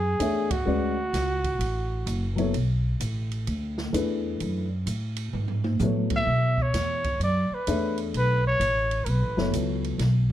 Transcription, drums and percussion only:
0.20 hi-hat pedal soft
0.20 ride medium
0.51 kick medium
0.51 ride medium
1.14 snare soft
1.14 hi-hat pedal medium
1.14 ride medium
1.44 kick soft
1.44 ride soft
1.61 ride medium
2.07 hi-hat pedal medium
2.07 ride medium
2.38 ride soft
2.54 ride medium
3.00 hi-hat pedal medium
3.00 ride medium
3.32 ride soft
3.47 ride medium
3.78 snare soft
3.94 hi-hat pedal medium
3.94 ride medium
4.40 ride soft
4.87 hi-hat pedal medium
4.87 ride medium
5.16 ride medium
5.33 floor tom soft
5.48 floor tom soft
5.64 high tom medium
5.79 hi-hat pedal soft
5.79 mid tom medium
6.10 kick medium
6.10 ride medium
6.58 kick soft
6.74 snare soft
6.74 hi-hat pedal medium
6.74 ride medium
7.04 kick medium
7.04 ride soft
7.21 ride soft
7.67 hi-hat pedal soft
7.67 ride medium
7.98 ride soft
8.14 ride medium
8.61 hi-hat pedal medium
8.61 ride medium
8.91 ride soft
9.06 ride medium
9.38 snare soft
9.53 hi-hat pedal medium
9.53 ride medium
9.84 ride soft
9.99 snare soft
9.99 ride medium

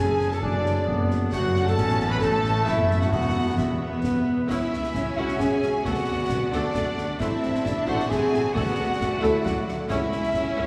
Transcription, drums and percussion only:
0.21 snare medium
0.32 snare medium
0.43 concert bass drum medium
0.66 snare medium
0.88 concert bass drum medium
1.11 snare medium
1.32 concert bass drum medium
1.32 snare medium
1.56 snare medium
1.67 snare medium
1.78 concert bass drum medium
1.78 snare medium
1.78 crash soft
1.89 snare medium
2.00 snare medium
2.22 concert bass drum medium
2.22 snare medium
2.44 snare medium
2.67 concert bass drum medium
2.67 snare medium
2.90 snare medium
3.01 snare medium
3.12 concert bass drum medium
3.12 snare medium
3.58 concert bass drum medium
3.58 snare medium
4.04 concert bass drum medium
4.04 snare medium
4.51 concert bass drum medium
4.51 snare medium
4.51 crash medium
4.73 snare medium
4.84 snare medium
4.95 concert bass drum medium
4.95 snare medium
5.28 snare medium
5.40 concert bass drum medium
5.40 snare medium
5.62 snare medium
5.85 concert bass drum medium
5.85 snare medium
6.29 concert bass drum medium
6.29 snare medium
6.53 snare medium
6.74 concert bass drum medium
6.74 snare medium
6.98 snare medium
7.20 concert bass drum medium
7.20 snare medium
7.43 snare soft
7.55 snare medium
7.66 concert bass drum medium
7.66 snare medium
8.00 snare medium
8.11 concert bass drum medium
8.11 snare medium
8.34 snare medium
8.56 concert bass drum medium
8.56 snare medium
9.01 concert bass drum medium
9.01 snare medium
9.24 snare medium
9.46 concert bass drum medium
9.46 snare medium
9.68 snare medium
9.90 concert bass drum medium
9.90 snare medium
9.90 crash soft
10.12 snare medium
10.23 snare medium
10.34 concert bass drum medium
10.34 snare medium

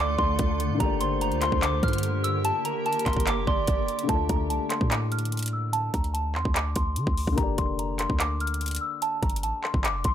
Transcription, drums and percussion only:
0.19 kick loud
0.39 kick loud
0.39 closed hi-hat medium
0.60 closed hi-hat medium
0.80 kick loud
0.80 closed hi-hat medium
1.01 closed hi-hat medium
1.21 closed hi-hat medium
1.32 closed hi-hat soft
1.42 clap medium
1.42 closed hi-hat medium
1.52 kick medium
1.62 clap loud
1.62 closed hi-hat medium
1.83 kick loud
1.83 closed hi-hat medium
1.88 closed hi-hat medium
1.93 closed hi-hat medium
1.98 closed hi-hat medium
2.03 closed hi-hat medium
2.24 closed hi-hat medium
2.45 closed hi-hat medium
2.65 closed hi-hat medium
2.86 closed hi-hat soft
2.93 closed hi-hat medium
2.99 closed hi-hat medium
3.06 kick medium
3.06 clap medium
3.06 closed hi-hat soft
3.13 kick medium
3.13 closed hi-hat medium
3.20 closed hi-hat medium
3.27 clap loud
3.27 closed hi-hat medium
3.47 kick loud
3.67 kick loud
3.67 closed hi-hat medium
3.88 closed hi-hat medium
3.99 closed hi-hat medium
4.09 kick loud
4.09 closed hi-hat medium
4.29 kick loud
4.29 closed hi-hat medium
4.50 closed hi-hat medium
4.70 clap medium
4.70 closed hi-hat medium
4.81 kick medium
4.91 clap loud
4.91 closed hi-hat medium
5.12 closed hi-hat soft
5.19 closed hi-hat medium
5.25 closed hi-hat medium
5.32 closed hi-hat medium
5.37 closed hi-hat medium
5.39 closed hi-hat medium
5.43 closed hi-hat medium
5.46 closed hi-hat medium
5.48 closed hi-hat medium
5.73 closed hi-hat medium
5.94 kick medium
5.94 closed hi-hat medium
6.04 closed hi-hat soft
6.15 closed hi-hat medium
6.35 clap medium
6.45 kick medium
6.55 clap loud
6.55 closed hi-hat medium
6.76 kick loud
6.76 closed hi-hat medium
6.96 closed hi-hat medium
7.07 kick loud
7.17 open hi-hat medium
7.27 kick medium
7.38 kick loud
7.38 closed hi-hat medium
7.58 kick loud
7.58 closed hi-hat medium
7.79 closed hi-hat medium
7.99 clap medium
7.99 closed hi-hat medium
8.10 kick medium
8.20 clap loud
8.20 closed hi-hat medium
8.40 closed hi-hat soft
8.47 closed hi-hat medium
8.54 closed hi-hat medium
8.61 closed hi-hat medium
8.66 closed hi-hat medium
8.68 closed hi-hat medium
8.71 closed hi-hat medium
8.75 closed hi-hat medium
8.76 closed hi-hat medium
9.02 closed hi-hat medium
9.23 kick loud
9.23 closed hi-hat soft
9.29 closed hi-hat medium
9.36 closed hi-hat medium
9.43 closed hi-hat medium
9.64 clap medium
9.74 kick medium
9.84 clap loud
9.84 closed hi-hat medium
10.04 kick medium
10.04 closed hi-hat medium

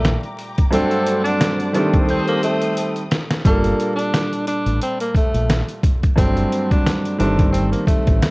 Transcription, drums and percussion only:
0.04 cross-stick medium
0.04 snare loud
0.04 closed hi-hat medium
0.23 closed hi-hat soft
0.38 closed hi-hat medium
0.58 kick medium
0.58 closed hi-hat soft
0.73 closed hi-hat loud
0.91 closed hi-hat soft
1.07 closed hi-hat medium
1.26 closed hi-hat medium
1.41 cross-stick medium
1.41 snare loud
1.41 closed hi-hat loud
1.60 closed hi-hat soft
1.75 closed hi-hat medium
1.94 kick loud
1.94 closed hi-hat medium
2.09 closed hi-hat medium
2.28 closed hi-hat soft
2.43 closed hi-hat medium
2.62 closed hi-hat medium
2.77 closed hi-hat medium
2.96 closed hi-hat soft
3.11 snare loud
3.11 closed hi-hat medium
3.31 snare loud
3.31 closed hi-hat soft
3.45 kick loud
3.45 closed hi-hat loud
3.64 closed hi-hat soft
3.80 closed hi-hat medium
3.99 closed hi-hat medium
4.14 cross-stick medium
4.14 snare loud
4.14 closed hi-hat loud
4.33 closed hi-hat soft
4.47 closed hi-hat medium
4.66 closed hi-hat medium
4.82 closed hi-hat medium
5.00 closed hi-hat medium
5.15 kick medium
5.15 closed hi-hat medium
5.35 closed hi-hat soft
5.50 cross-stick medium
5.50 snare loud
5.50 closed hi-hat medium
5.69 closed hi-hat soft
5.83 kick loud
5.83 closed hi-hat medium
6.03 kick medium
6.03 closed hi-hat soft
6.18 kick loud
6.18 closed hi-hat loud
6.37 closed hi-hat medium
6.52 closed hi-hat medium
6.71 kick loud
6.71 closed hi-hat medium
6.87 cross-stick medium
6.87 snare loud
6.87 closed hi-hat loud
7.05 closed hi-hat soft
7.20 closed hi-hat medium
7.39 kick loud
7.39 closed hi-hat medium
7.54 closed hi-hat medium
7.73 closed hi-hat medium
7.87 kick medium
7.87 closed hi-hat medium
8.07 kick loud
8.07 closed hi-hat soft
8.23 cross-stick medium
8.23 snare loud
8.23 closed hi-hat medium

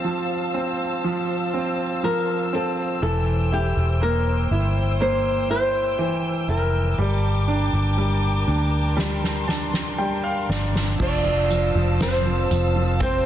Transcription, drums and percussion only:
8.98 snare soft
9.24 snare soft
9.49 snare medium
9.74 snare soft
10.50 snare medium
10.76 snare medium
11.00 kick loud
11.00 crash medium
11.00 shaker medium
11.25 shaker soft
11.51 closed hi-hat medium
11.51 shaker medium
11.76 shaker soft
12.01 snare loud
12.01 closed hi-hat medium
12.01 shaker medium
12.26 shaker soft
12.51 closed hi-hat medium
12.76 shaker soft
13.00 kick medium
13.00 closed hi-hat medium
13.00 shaker medium

